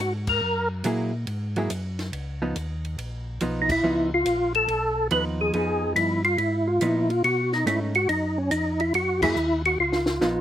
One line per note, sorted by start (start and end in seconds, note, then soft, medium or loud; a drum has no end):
0.00 0.41 G#2 medium
0.00 0.13 F#4 medium
0.27 0.69 A#4 medium
0.27 kick medium
0.27 crash medium
0.42 0.83 F#2 medium
0.84 1.26 A#2 medium
0.84 1.11 F#3 medium
0.84 1.11 A#3 medium
0.84 1.11 E4 medium
0.84 1.11 G#4 medium
0.84 hi-hat pedal medium
0.84 ride medium
1.27 1.69 G#2 medium
1.27 ride medium
1.56 1.69 F#3 medium
1.56 1.69 A#3 medium
1.56 1.70 E4 medium
1.56 1.70 G#4 medium
1.56 ride soft
1.70 2.12 F#2 medium
1.70 hi-hat pedal medium
1.70 ride medium
1.99 snare soft
1.99 ride soft
2.12 2.54 C#2 medium
2.12 ride medium
2.42 2.54 F3 medium
2.42 2.54 B3 medium
2.42 2.55 D#4 medium
2.56 2.97 D#2 medium
2.56 hi-hat pedal medium
2.56 ride medium
2.85 ride soft
2.98 3.40 A#1 medium
2.98 ride medium
3.40 3.82 B1 medium
3.40 3.67 F3 medium
3.40 3.67 B3 medium
3.40 3.67 D#4 medium
3.40 hi-hat pedal medium
3.40 ride medium
3.62 3.70 D#4 medium
3.69 4.10 E4 medium
3.69 kick medium
3.69 crash medium
3.84 4.25 C#2 medium
3.84 4.09 F3 medium
3.84 4.10 B3 medium
3.84 4.10 D#4 medium
4.14 4.53 F4 loud
4.26 4.67 A#1 medium
4.26 hi-hat pedal medium
4.26 ride medium
4.54 5.07 A4 loud
4.54 ride soft
4.68 5.09 B1 medium
4.68 ride medium
5.11 5.52 D#2 medium
5.11 5.53 F3 medium
5.11 5.54 B3 medium
5.11 5.54 D#4 medium
5.11 5.25 B4 loud
5.11 hi-hat pedal medium
5.11 ride medium
5.41 5.53 G#4 medium
5.53 5.95 F2 medium
5.53 6.19 F3 medium
5.53 6.20 B3 medium
5.53 6.20 D#4 medium
5.53 5.93 G#4 medium
5.53 ride medium
5.96 6.37 G2 medium
5.96 6.23 E4 medium
5.96 hi-hat pedal medium
5.96 ride medium
6.24 6.38 F4 medium
6.24 ride soft
6.38 6.80 G#2 medium
6.38 6.68 E4 medium
6.38 ride medium
6.67 6.82 F4 medium
6.81 7.22 A#2 medium
6.81 7.07 F3 medium
6.81 7.08 B3 medium
6.81 7.08 D#4 medium
6.81 7.11 E4 medium
6.81 hi-hat pedal medium
6.81 ride medium
7.10 7.23 F4 medium
7.10 ride soft
7.24 7.65 B2 medium
7.24 7.53 F#4 medium
7.24 ride medium
7.52 7.66 D#4 medium
7.52 snare soft
7.66 8.07 G#2 loud
7.66 7.92 A3 medium
7.66 7.93 C#4 medium
7.66 7.93 D#4 medium
7.66 7.80 E4 medium
7.66 hi-hat pedal medium
7.66 ride medium
7.95 8.08 F#4 medium
7.95 ride soft
8.09 8.50 F#2 medium
8.09 8.38 D#4 medium
8.09 ride medium
8.38 8.51 C#4 medium
8.51 8.93 F2 medium
8.51 8.81 D#4 medium
8.51 hi-hat pedal medium
8.51 ride medium
8.80 8.93 E4 medium
8.80 ride soft
8.94 9.35 F#2 medium
8.94 9.21 F#4 medium
8.94 ride medium
9.22 9.35 F#3 medium
9.22 9.35 A#3 medium
9.22 9.62 E4 loud
9.22 9.36 E4 medium
9.22 9.36 G#4 medium
9.22 kick medium
9.22 crash medium
9.36 9.77 D#2 loud
9.36 hi-hat pedal medium
9.65 9.78 F#4 medium
9.65 ride soft
9.78 10.20 C#2 medium
9.78 10.41 F4 medium
9.92 snare medium
10.06 snare medium
10.21 10.41 A#1 medium
10.21 10.41 F3 medium
10.21 10.41 B3 medium
10.21 10.41 D#4 medium
10.21 snare medium
10.21 hi-hat pedal medium